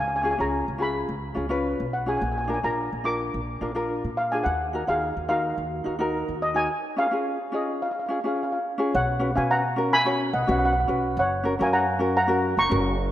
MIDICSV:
0, 0, Header, 1, 4, 480
1, 0, Start_track
1, 0, Tempo, 559180
1, 1901, Time_signature, 4, 2, 24, 8
1, 11260, End_track
2, 0, Start_track
2, 0, Title_t, "Steel pan"
2, 0, Program_c, 0, 114
2, 68, Note_on_c, 0, 80, 56
2, 126, Note_off_c, 0, 80, 0
2, 137, Note_on_c, 0, 80, 72
2, 179, Note_off_c, 0, 80, 0
2, 189, Note_on_c, 0, 80, 60
2, 253, Note_off_c, 0, 80, 0
2, 266, Note_on_c, 0, 80, 69
2, 328, Note_off_c, 0, 80, 0
2, 349, Note_on_c, 0, 82, 79
2, 706, Note_on_c, 0, 83, 89
2, 712, Note_off_c, 0, 82, 0
2, 1389, Note_off_c, 0, 83, 0
2, 1660, Note_on_c, 0, 78, 68
2, 1791, Note_off_c, 0, 78, 0
2, 1792, Note_on_c, 0, 80, 68
2, 1853, Note_off_c, 0, 80, 0
2, 1862, Note_on_c, 0, 80, 54
2, 1905, Note_off_c, 0, 80, 0
2, 1915, Note_on_c, 0, 80, 58
2, 1979, Note_off_c, 0, 80, 0
2, 1989, Note_on_c, 0, 80, 49
2, 2031, Note_off_c, 0, 80, 0
2, 2041, Note_on_c, 0, 80, 62
2, 2087, Note_off_c, 0, 80, 0
2, 2097, Note_on_c, 0, 80, 51
2, 2169, Note_off_c, 0, 80, 0
2, 2178, Note_on_c, 0, 80, 62
2, 2245, Note_off_c, 0, 80, 0
2, 2269, Note_on_c, 0, 82, 77
2, 2598, Note_off_c, 0, 82, 0
2, 2620, Note_on_c, 0, 86, 91
2, 3309, Note_off_c, 0, 86, 0
2, 3582, Note_on_c, 0, 77, 84
2, 3706, Note_on_c, 0, 80, 76
2, 3714, Note_off_c, 0, 77, 0
2, 3809, Note_on_c, 0, 78, 79
2, 3826, Note_off_c, 0, 80, 0
2, 4192, Note_on_c, 0, 77, 88
2, 4196, Note_off_c, 0, 78, 0
2, 4522, Note_off_c, 0, 77, 0
2, 4541, Note_on_c, 0, 77, 85
2, 5472, Note_off_c, 0, 77, 0
2, 5513, Note_on_c, 0, 75, 82
2, 5630, Note_on_c, 0, 80, 83
2, 5641, Note_off_c, 0, 75, 0
2, 5996, Note_on_c, 0, 77, 84
2, 5998, Note_off_c, 0, 80, 0
2, 6440, Note_off_c, 0, 77, 0
2, 6479, Note_on_c, 0, 75, 63
2, 6714, Note_on_c, 0, 77, 67
2, 6722, Note_off_c, 0, 75, 0
2, 6776, Note_off_c, 0, 77, 0
2, 6791, Note_on_c, 0, 77, 48
2, 6848, Note_off_c, 0, 77, 0
2, 6862, Note_on_c, 0, 77, 47
2, 6910, Note_off_c, 0, 77, 0
2, 6920, Note_on_c, 0, 77, 44
2, 6964, Note_off_c, 0, 77, 0
2, 6974, Note_on_c, 0, 77, 47
2, 7036, Note_off_c, 0, 77, 0
2, 7046, Note_on_c, 0, 77, 37
2, 7092, Note_off_c, 0, 77, 0
2, 7103, Note_on_c, 0, 77, 47
2, 7161, Note_off_c, 0, 77, 0
2, 7171, Note_on_c, 0, 77, 43
2, 7225, Note_off_c, 0, 77, 0
2, 7236, Note_on_c, 0, 77, 54
2, 7297, Note_off_c, 0, 77, 0
2, 7316, Note_on_c, 0, 77, 48
2, 7367, Note_off_c, 0, 77, 0
2, 7678, Note_on_c, 0, 73, 57
2, 7686, Note_on_c, 0, 78, 84
2, 8015, Note_off_c, 0, 73, 0
2, 8019, Note_off_c, 0, 78, 0
2, 8031, Note_on_c, 0, 77, 63
2, 8040, Note_on_c, 0, 80, 77
2, 8139, Note_off_c, 0, 77, 0
2, 8156, Note_off_c, 0, 80, 0
2, 8162, Note_on_c, 0, 82, 96
2, 8163, Note_on_c, 0, 78, 76
2, 8498, Note_off_c, 0, 78, 0
2, 8525, Note_on_c, 0, 80, 86
2, 8525, Note_on_c, 0, 83, 110
2, 8533, Note_off_c, 0, 82, 0
2, 8849, Note_off_c, 0, 80, 0
2, 8872, Note_on_c, 0, 78, 69
2, 8877, Note_on_c, 0, 75, 56
2, 8884, Note_off_c, 0, 83, 0
2, 8934, Note_off_c, 0, 78, 0
2, 8937, Note_off_c, 0, 75, 0
2, 8950, Note_on_c, 0, 78, 53
2, 9007, Note_off_c, 0, 78, 0
2, 9028, Note_on_c, 0, 78, 70
2, 9074, Note_off_c, 0, 78, 0
2, 9091, Note_on_c, 0, 78, 61
2, 9134, Note_off_c, 0, 78, 0
2, 9145, Note_on_c, 0, 78, 73
2, 9198, Note_off_c, 0, 78, 0
2, 9208, Note_on_c, 0, 78, 60
2, 9262, Note_off_c, 0, 78, 0
2, 9272, Note_on_c, 0, 78, 56
2, 9325, Note_off_c, 0, 78, 0
2, 9607, Note_on_c, 0, 78, 81
2, 9613, Note_on_c, 0, 73, 67
2, 9941, Note_off_c, 0, 73, 0
2, 9974, Note_off_c, 0, 78, 0
2, 9978, Note_on_c, 0, 80, 77
2, 9983, Note_on_c, 0, 77, 62
2, 10023, Note_off_c, 0, 80, 0
2, 10027, Note_off_c, 0, 77, 0
2, 10069, Note_on_c, 0, 82, 95
2, 10074, Note_on_c, 0, 78, 73
2, 10408, Note_off_c, 0, 82, 0
2, 10410, Note_off_c, 0, 78, 0
2, 10445, Note_on_c, 0, 82, 100
2, 10446, Note_on_c, 0, 78, 74
2, 10768, Note_off_c, 0, 78, 0
2, 10792, Note_off_c, 0, 82, 0
2, 10803, Note_on_c, 0, 82, 78
2, 10805, Note_on_c, 0, 85, 98
2, 11239, Note_off_c, 0, 82, 0
2, 11240, Note_off_c, 0, 85, 0
2, 11260, End_track
3, 0, Start_track
3, 0, Title_t, "Ukulele"
3, 0, Program_c, 1, 24
3, 197, Note_on_c, 1, 61, 65
3, 205, Note_on_c, 1, 65, 54
3, 211, Note_on_c, 1, 68, 76
3, 285, Note_off_c, 1, 61, 0
3, 286, Note_off_c, 1, 65, 0
3, 291, Note_off_c, 1, 68, 0
3, 329, Note_on_c, 1, 61, 63
3, 336, Note_on_c, 1, 65, 52
3, 344, Note_on_c, 1, 68, 65
3, 552, Note_off_c, 1, 61, 0
3, 556, Note_off_c, 1, 65, 0
3, 560, Note_off_c, 1, 68, 0
3, 672, Note_on_c, 1, 61, 73
3, 678, Note_on_c, 1, 65, 65
3, 686, Note_on_c, 1, 68, 65
3, 977, Note_off_c, 1, 61, 0
3, 980, Note_off_c, 1, 65, 0
3, 984, Note_off_c, 1, 68, 0
3, 1155, Note_on_c, 1, 61, 62
3, 1160, Note_on_c, 1, 65, 59
3, 1170, Note_on_c, 1, 68, 62
3, 1243, Note_off_c, 1, 61, 0
3, 1246, Note_off_c, 1, 65, 0
3, 1251, Note_off_c, 1, 68, 0
3, 1280, Note_on_c, 1, 61, 78
3, 1288, Note_on_c, 1, 65, 73
3, 1294, Note_on_c, 1, 71, 93
3, 1579, Note_off_c, 1, 61, 0
3, 1583, Note_off_c, 1, 65, 0
3, 1586, Note_off_c, 1, 71, 0
3, 1768, Note_on_c, 1, 61, 56
3, 1773, Note_on_c, 1, 65, 58
3, 1781, Note_on_c, 1, 68, 69
3, 1892, Note_off_c, 1, 61, 0
3, 1894, Note_off_c, 1, 65, 0
3, 1898, Note_off_c, 1, 68, 0
3, 2125, Note_on_c, 1, 62, 70
3, 2133, Note_on_c, 1, 65, 59
3, 2141, Note_on_c, 1, 70, 73
3, 2209, Note_off_c, 1, 62, 0
3, 2214, Note_off_c, 1, 65, 0
3, 2218, Note_off_c, 1, 70, 0
3, 2259, Note_on_c, 1, 62, 60
3, 2267, Note_on_c, 1, 65, 53
3, 2273, Note_on_c, 1, 70, 60
3, 2479, Note_off_c, 1, 62, 0
3, 2484, Note_off_c, 1, 65, 0
3, 2484, Note_off_c, 1, 70, 0
3, 2608, Note_on_c, 1, 62, 65
3, 2617, Note_on_c, 1, 65, 60
3, 2626, Note_on_c, 1, 70, 74
3, 2907, Note_off_c, 1, 62, 0
3, 2911, Note_off_c, 1, 65, 0
3, 2916, Note_off_c, 1, 70, 0
3, 3098, Note_on_c, 1, 62, 67
3, 3103, Note_on_c, 1, 65, 61
3, 3109, Note_on_c, 1, 70, 66
3, 3177, Note_off_c, 1, 62, 0
3, 3180, Note_off_c, 1, 65, 0
3, 3183, Note_off_c, 1, 70, 0
3, 3216, Note_on_c, 1, 62, 72
3, 3222, Note_on_c, 1, 65, 65
3, 3227, Note_on_c, 1, 70, 84
3, 3510, Note_off_c, 1, 62, 0
3, 3511, Note_off_c, 1, 65, 0
3, 3515, Note_off_c, 1, 70, 0
3, 3708, Note_on_c, 1, 62, 65
3, 3715, Note_on_c, 1, 65, 53
3, 3722, Note_on_c, 1, 68, 67
3, 3824, Note_off_c, 1, 62, 0
3, 3826, Note_off_c, 1, 65, 0
3, 3831, Note_off_c, 1, 68, 0
3, 4061, Note_on_c, 1, 63, 63
3, 4066, Note_on_c, 1, 66, 57
3, 4076, Note_on_c, 1, 70, 75
3, 4139, Note_off_c, 1, 63, 0
3, 4142, Note_off_c, 1, 66, 0
3, 4147, Note_off_c, 1, 70, 0
3, 4183, Note_on_c, 1, 63, 62
3, 4189, Note_on_c, 1, 66, 55
3, 4197, Note_on_c, 1, 68, 66
3, 4403, Note_off_c, 1, 63, 0
3, 4406, Note_off_c, 1, 66, 0
3, 4410, Note_off_c, 1, 68, 0
3, 4537, Note_on_c, 1, 63, 75
3, 4546, Note_on_c, 1, 70, 70
3, 4550, Note_on_c, 1, 66, 57
3, 4833, Note_off_c, 1, 63, 0
3, 4838, Note_off_c, 1, 66, 0
3, 4839, Note_off_c, 1, 70, 0
3, 5014, Note_on_c, 1, 63, 62
3, 5023, Note_on_c, 1, 66, 60
3, 5029, Note_on_c, 1, 70, 67
3, 5097, Note_off_c, 1, 63, 0
3, 5102, Note_off_c, 1, 66, 0
3, 5105, Note_off_c, 1, 70, 0
3, 5139, Note_on_c, 1, 63, 78
3, 5146, Note_on_c, 1, 66, 68
3, 5154, Note_on_c, 1, 70, 90
3, 5433, Note_off_c, 1, 63, 0
3, 5436, Note_off_c, 1, 66, 0
3, 5440, Note_off_c, 1, 70, 0
3, 5616, Note_on_c, 1, 63, 71
3, 5622, Note_on_c, 1, 66, 57
3, 5633, Note_on_c, 1, 70, 69
3, 5740, Note_off_c, 1, 63, 0
3, 5743, Note_off_c, 1, 66, 0
3, 5748, Note_off_c, 1, 70, 0
3, 5978, Note_on_c, 1, 61, 60
3, 5985, Note_on_c, 1, 65, 61
3, 5991, Note_on_c, 1, 68, 67
3, 6060, Note_off_c, 1, 61, 0
3, 6064, Note_off_c, 1, 65, 0
3, 6067, Note_off_c, 1, 68, 0
3, 6105, Note_on_c, 1, 61, 67
3, 6109, Note_on_c, 1, 65, 61
3, 6119, Note_on_c, 1, 68, 64
3, 6326, Note_off_c, 1, 61, 0
3, 6328, Note_off_c, 1, 65, 0
3, 6333, Note_off_c, 1, 68, 0
3, 6454, Note_on_c, 1, 61, 68
3, 6461, Note_on_c, 1, 65, 61
3, 6467, Note_on_c, 1, 68, 66
3, 6753, Note_off_c, 1, 61, 0
3, 6756, Note_off_c, 1, 65, 0
3, 6760, Note_off_c, 1, 68, 0
3, 6940, Note_on_c, 1, 61, 69
3, 6948, Note_on_c, 1, 65, 60
3, 6953, Note_on_c, 1, 68, 66
3, 7021, Note_off_c, 1, 61, 0
3, 7026, Note_off_c, 1, 65, 0
3, 7028, Note_off_c, 1, 68, 0
3, 7072, Note_on_c, 1, 61, 62
3, 7079, Note_on_c, 1, 65, 59
3, 7083, Note_on_c, 1, 68, 68
3, 7360, Note_off_c, 1, 61, 0
3, 7364, Note_off_c, 1, 65, 0
3, 7365, Note_off_c, 1, 68, 0
3, 7536, Note_on_c, 1, 61, 79
3, 7547, Note_on_c, 1, 68, 75
3, 7549, Note_on_c, 1, 65, 63
3, 7660, Note_off_c, 1, 61, 0
3, 7665, Note_off_c, 1, 65, 0
3, 7667, Note_off_c, 1, 68, 0
3, 7893, Note_on_c, 1, 61, 75
3, 7898, Note_on_c, 1, 66, 67
3, 7905, Note_on_c, 1, 71, 70
3, 7977, Note_off_c, 1, 61, 0
3, 7981, Note_off_c, 1, 66, 0
3, 7983, Note_off_c, 1, 71, 0
3, 8028, Note_on_c, 1, 61, 62
3, 8035, Note_on_c, 1, 66, 55
3, 8042, Note_on_c, 1, 71, 77
3, 8247, Note_off_c, 1, 61, 0
3, 8251, Note_off_c, 1, 66, 0
3, 8254, Note_off_c, 1, 71, 0
3, 8379, Note_on_c, 1, 61, 76
3, 8385, Note_on_c, 1, 66, 64
3, 8395, Note_on_c, 1, 70, 82
3, 8534, Note_off_c, 1, 61, 0
3, 8537, Note_off_c, 1, 66, 0
3, 8542, Note_off_c, 1, 70, 0
3, 8626, Note_on_c, 1, 61, 78
3, 8632, Note_on_c, 1, 66, 67
3, 8637, Note_on_c, 1, 73, 76
3, 8845, Note_off_c, 1, 61, 0
3, 8848, Note_off_c, 1, 66, 0
3, 8851, Note_off_c, 1, 73, 0
3, 8988, Note_on_c, 1, 61, 77
3, 8993, Note_on_c, 1, 66, 72
3, 9000, Note_on_c, 1, 71, 82
3, 9206, Note_off_c, 1, 61, 0
3, 9209, Note_off_c, 1, 66, 0
3, 9212, Note_off_c, 1, 71, 0
3, 9335, Note_on_c, 1, 61, 67
3, 9341, Note_on_c, 1, 66, 69
3, 9347, Note_on_c, 1, 71, 71
3, 9581, Note_off_c, 1, 61, 0
3, 9584, Note_off_c, 1, 66, 0
3, 9587, Note_off_c, 1, 71, 0
3, 9815, Note_on_c, 1, 61, 78
3, 9822, Note_on_c, 1, 66, 61
3, 9830, Note_on_c, 1, 70, 81
3, 9898, Note_off_c, 1, 61, 0
3, 9899, Note_off_c, 1, 66, 0
3, 9905, Note_off_c, 1, 70, 0
3, 9948, Note_on_c, 1, 61, 66
3, 9956, Note_on_c, 1, 66, 67
3, 9965, Note_on_c, 1, 70, 78
3, 10165, Note_off_c, 1, 61, 0
3, 10169, Note_off_c, 1, 66, 0
3, 10173, Note_off_c, 1, 70, 0
3, 10292, Note_on_c, 1, 61, 74
3, 10301, Note_on_c, 1, 66, 74
3, 10305, Note_on_c, 1, 70, 81
3, 10448, Note_off_c, 1, 61, 0
3, 10452, Note_off_c, 1, 66, 0
3, 10454, Note_off_c, 1, 70, 0
3, 10534, Note_on_c, 1, 61, 80
3, 10541, Note_on_c, 1, 66, 80
3, 10549, Note_on_c, 1, 70, 89
3, 10756, Note_off_c, 1, 61, 0
3, 10760, Note_off_c, 1, 66, 0
3, 10764, Note_off_c, 1, 70, 0
3, 10896, Note_on_c, 1, 61, 79
3, 10906, Note_on_c, 1, 66, 73
3, 10912, Note_on_c, 1, 70, 78
3, 11118, Note_off_c, 1, 61, 0
3, 11122, Note_off_c, 1, 66, 0
3, 11125, Note_off_c, 1, 70, 0
3, 11260, End_track
4, 0, Start_track
4, 0, Title_t, "Upright bass"
4, 0, Program_c, 2, 32
4, 0, Note_on_c, 2, 37, 98
4, 309, Note_off_c, 2, 37, 0
4, 344, Note_on_c, 2, 37, 81
4, 564, Note_off_c, 2, 37, 0
4, 584, Note_on_c, 2, 37, 80
4, 908, Note_off_c, 2, 37, 0
4, 932, Note_on_c, 2, 37, 83
4, 1155, Note_off_c, 2, 37, 0
4, 1172, Note_on_c, 2, 37, 78
4, 1510, Note_off_c, 2, 37, 0
4, 1543, Note_on_c, 2, 35, 84
4, 1868, Note_off_c, 2, 35, 0
4, 1901, Note_on_c, 2, 34, 94
4, 2236, Note_off_c, 2, 34, 0
4, 2265, Note_on_c, 2, 34, 75
4, 2486, Note_off_c, 2, 34, 0
4, 2511, Note_on_c, 2, 34, 78
4, 2833, Note_off_c, 2, 34, 0
4, 2868, Note_on_c, 2, 34, 91
4, 3085, Note_off_c, 2, 34, 0
4, 3100, Note_on_c, 2, 34, 74
4, 3437, Note_off_c, 2, 34, 0
4, 3471, Note_on_c, 2, 46, 79
4, 3794, Note_off_c, 2, 46, 0
4, 3827, Note_on_c, 2, 39, 101
4, 4161, Note_off_c, 2, 39, 0
4, 4193, Note_on_c, 2, 39, 82
4, 4412, Note_off_c, 2, 39, 0
4, 4435, Note_on_c, 2, 39, 82
4, 4757, Note_off_c, 2, 39, 0
4, 4786, Note_on_c, 2, 39, 85
4, 5006, Note_off_c, 2, 39, 0
4, 5030, Note_on_c, 2, 39, 73
4, 5364, Note_off_c, 2, 39, 0
4, 5395, Note_on_c, 2, 39, 80
4, 5718, Note_off_c, 2, 39, 0
4, 7679, Note_on_c, 2, 35, 113
4, 8009, Note_off_c, 2, 35, 0
4, 8046, Note_on_c, 2, 47, 94
4, 8839, Note_off_c, 2, 47, 0
4, 8870, Note_on_c, 2, 35, 93
4, 8985, Note_off_c, 2, 35, 0
4, 9002, Note_on_c, 2, 35, 104
4, 9321, Note_off_c, 2, 35, 0
4, 9349, Note_on_c, 2, 35, 89
4, 9567, Note_off_c, 2, 35, 0
4, 9587, Note_on_c, 2, 30, 105
4, 9921, Note_off_c, 2, 30, 0
4, 9963, Note_on_c, 2, 42, 105
4, 10755, Note_off_c, 2, 42, 0
4, 10791, Note_on_c, 2, 30, 85
4, 10903, Note_off_c, 2, 30, 0
4, 10914, Note_on_c, 2, 30, 112
4, 11234, Note_off_c, 2, 30, 0
4, 11260, End_track
0, 0, End_of_file